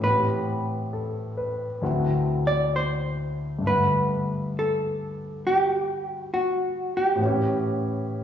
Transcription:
0.00 A2 E3 B3 B4
0.07 C4 G4
0.93 A4
1.37 B4
1.82 D2 D3 C4 E4 F#4
2.47 D5
2.76 C5
3.59 G2 D3
3.64 A3 B3 B4
3.69 F#5
4.59 A4
5.47 G4
6.07 F#4
6.34 F#4
6.97 G4
7.15 A2 E3
7.21 B3 C#4
7.26 G4

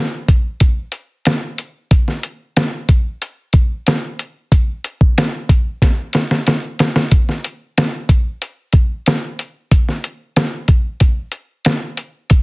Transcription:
0.28 kick, closed hi-hat
0.60 kick, closed hi-hat
0.92 closed hi-hat
1.25 snare, closed hi-hat
1.58 closed hi-hat
1.91 kick, closed hi-hat
2.08 snare
2.23 closed hi-hat
2.57 snare, closed hi-hat
2.89 kick, closed hi-hat
3.22 closed hi-hat
3.53 kick, closed hi-hat
3.87 snare, closed hi-hat
4.19 closed hi-hat
4.52 kick, closed hi-hat
4.84 closed hi-hat
5.01 kick
5.18 snare, closed hi-hat
5.49 kick, closed hi-hat
5.82 kick, snare, closed hi-hat
6.13 snare, closed hi-hat
6.31 snare
6.47 snare, closed hi-hat
6.79 snare, closed hi-hat
6.96 snare
7.12 kick, closed hi-hat
7.29 snare
7.44 closed hi-hat
7.78 snare, closed hi-hat
8.09 kick, closed hi-hat
8.42 closed hi-hat
8.73 kick, closed hi-hat
9.06 snare, closed hi-hat
9.39 closed hi-hat
9.71 kick, closed hi-hat
9.89 snare
10.04 closed hi-hat
10.36 snare, closed hi-hat
10.68 kick, closed hi-hat
11.00 kick, closed hi-hat
11.32 closed hi-hat
11.65 snare, closed hi-hat
11.97 closed hi-hat
12.30 kick, closed hi-hat

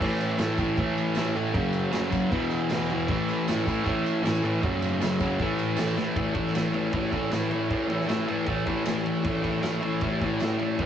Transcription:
0.00 A2 E3 A3, kick, crash, tambourine
0.10 tambourine
0.20 tambourine, crash
0.31 tambourine
0.38 A2 E3 A3, snare, tambourine, crash
0.58 A2 E3 A3, kick, tambourine, crash
0.69 tambourine
0.77 A2 E3 A3, kick, crash
0.98 tambourine, crash
1.06 tambourine
1.15 A2 E3 A3, snare, tambourine, crash
1.24 tambourine
1.34 A2 E3 A3, tambourine, crash
1.43 tambourine
1.53 F#2 C#3 F#3, kick, tambourine, crash
1.63 tambourine
1.73 tambourine, crash
1.83 tambourine
1.91 F#2 C#3 F#3, snare, tambourine, crash
2.11 F#2 C#3 F#3, kick, tambourine, crash
2.22 tambourine
2.31 E2 B2 E3, kick, crash
2.50 tambourine, crash
2.60 tambourine
2.70 E2 B2 E3, snare, tambourine, crash
2.79 tambourine
2.90 E2 B2 E3, tambourine, crash
3.00 tambourine
3.08 A2 E3 A3, kick, tambourine, crash
3.20 tambourine
3.28 tambourine, crash
3.40 tambourine
3.48 A2 E3 A3, snare, tambourine, crash
3.67 A2 E3 A3, kick, tambourine, crash
3.78 tambourine
3.84 A2 E3 A3, kick, crash
4.06 tambourine, crash
4.16 tambourine
4.23 A2 E3 A3, snare, tambourine, crash
4.34 tambourine
4.43 A2 E3 A3, tambourine, crash
4.54 tambourine
4.62 F#2 C#3 F#3, kick, crash
4.82 tambourine, crash
4.93 tambourine
5.01 F#2 C#3 F#3, snare, tambourine, crash
5.20 F#2 C#3 F#3, kick, tambourine, crash
5.31 tambourine
5.40 A2 E3 A3, kick, crash
5.58 tambourine, crash
5.68 tambourine
5.76 A2 E3 A3, snare, tambourine, crash
5.87 tambourine
5.97 A2 E3 A3, snare, tambourine
6.07 tambourine
6.16 A2 E3 A3, kick, ride
6.33 E3 A3, kick, ride
6.47 snare
6.53 A2 E3 A3, snare, ride, tambourine
6.73 A2 E3 A3, ride
6.92 A2 E3 A3, kick, ride
7.11 A2 E3 A3, kick, ride
7.31 A2 E3 A3, snare, ride, tambourine
7.51 E3 A3, ride
7.69 A2 E3 A3, kick, ride
7.88 E3 A3, ride
8.01 snare
8.06 A2 E3 A3, ride, tambourine
8.10 snare
8.27 A2 E3 A3, ride
8.46 A2 E3 A3, kick, ride
8.66 A2 E3 A3, kick, ride
8.85 A2 E3 A3, snare, ride, tambourine
9.03 E3 A3, ride
9.24 A2 E3 A3, kick, ride
9.42 E3 A3, kick, ride
9.60 A2 E3 A3, snare, ride, tambourine
9.81 A2 E3 A3, ride
10.01 A2 E3, kick, ride
10.05 A3
10.21 A2 E3 A3, kick, ride
10.40 A2 E3, snare, ride, tambourine
10.44 A3
10.59 E3 A3, ride
10.79 A2 E3 A3, kick, ride

